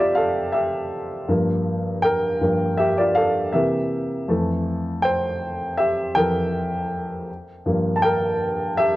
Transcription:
Already playing: F2 E3 A3 G4 C5 D5 E5 G5
0.00 F4
0.15 A4 F5
0.52 G4 E5
1.28 G2 F3 A#3
2.02 A#4 G5
2.41 G2 F3 A#3
2.78 G4 E5
2.98 F4 D5
3.15 A4 F5
3.53 C3 E3 A#3 G4 E5
4.28 F2 E3 A3
5.02 C5 G5
5.77 G4 E5
6.15 F2 E3 A4 A#4 G5
7.66 G2 F3 A#3
7.96 A5
8.02 A#4 G5
8.77 G4 E5

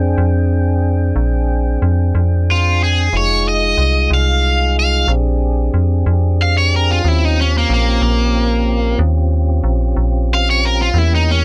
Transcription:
Already playing: F2 C4 D4 G#4 G5
0.18 F2
1.16 A#1
1.82 F2
2.15 F2
2.51 F4
2.84 G#4
3.13 F1 G#3 D#4 F4 G#4
3.17 C#5
3.49 D#5
3.77 C2
4.10 C2 F5
4.80 F5
5.08 A#1 C4 D4 G4 G#4
5.74 F2
6.06 F2
6.42 F5
6.58 C#5
6.76 A#4
6.91 F4
7.04 D#2 C4 C#4 E4 F4 G4
7.25 D#4
7.41 C#4
7.58 A#3
7.70 A#1
7.74 A#3
8.02 A#1
8.99 D#2
9.64 A#1
9.97 A#1
10.34 F5
10.51 C#5
10.65 A#4
10.81 F4
10.94 E2 E3 A#3 C#4 G4
10.98 E4
11.15 D#4
11.31 C#4

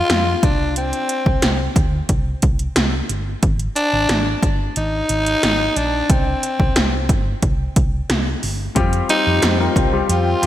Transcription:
Already playing: F4
0.10 F2, snare, closed hi-hat
0.43 C2 D4, kick, closed hi-hat
0.76 C4, closed hi-hat
0.93 closed hi-hat
1.09 closed hi-hat
1.26 C2, kick
1.42 C2, snare, closed hi-hat
1.76 D2, kick, closed hi-hat
2.09 C2, kick, closed hi-hat
2.42 C2, kick, closed hi-hat
2.59 closed hi-hat
2.76 C2, snare, closed hi-hat
3.09 G1, closed hi-hat
3.43 G#1, kick, closed hi-hat
3.59 closed hi-hat
3.76 D4, closed hi-hat
3.93 G#1
4.09 G#1, snare, closed hi-hat
4.43 G1, kick, closed hi-hat
4.76 G#1 D#4, closed hi-hat
5.09 G#1, closed hi-hat
5.26 closed hi-hat
5.43 G#1, snare, closed hi-hat
5.76 A#1 D4, closed hi-hat
6.10 C2 C4, kick, closed hi-hat
6.43 closed hi-hat
6.60 C2, kick
6.76 C2, snare, closed hi-hat
7.09 G1, kick, closed hi-hat
7.42 C2, kick, closed hi-hat
7.76 C2, kick, closed hi-hat
8.10 C2, snare, closed hi-hat
8.43 G1, open hi-hat
8.75 F2 G3 C4 F4 G4 C5 G5 C6, kick, closed hi-hat
8.93 closed hi-hat
9.09 G3 C4 D#4 F4 G4, closed hi-hat
9.27 F2
9.42 F2, snare, clap, closed hi-hat
9.59 G3 C4 F4 A#4
9.76 C2, kick, closed hi-hat
9.93 G3 C4 F4 G4
10.09 F2 F4, closed hi-hat
10.42 F2 G3 C4 F4, closed hi-hat

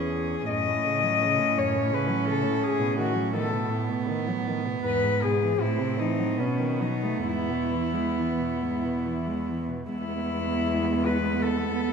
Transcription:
Already playing: E2 E3 C#4 G#4
0.48 F#2 A2 C#4 D#5
0.66 A2
0.85 C#3
1.03 F#3
1.23 C#3
1.39 A2
1.56 F#2 C#5
1.75 A2
1.91 C#3 B4
2.08 F#3
2.26 C#3 A4
2.43 A2
2.62 A2 G#4
2.79 B2
2.96 D#3 F#4
3.14 F#3
3.33 D#3 B3 A4
3.51 B2
3.69 A2
3.88 B2
4.08 D#3
4.27 F#3
4.47 D#3
4.66 B2
4.85 E2 G#2 B4
5.03 G#2
5.22 B2 G#4
5.42 E3
5.59 A2 C4 E4
5.78 C3
5.98 E3 D#4
6.18 F#3
6.37 B2 B3 C#4
6.59 D#3
6.80 F#3 D#4
7.03 A3
7.24 E2 G#2 E4
7.49 B2
7.71 E3
7.93 G#3
8.17 E3
8.39 B2
8.62 G#2
8.84 B2
9.05 E3
9.26 G#3
9.47 E3
9.68 B2
9.89 E2 G#3 B3 E4
11.05 B4
11.42 A4

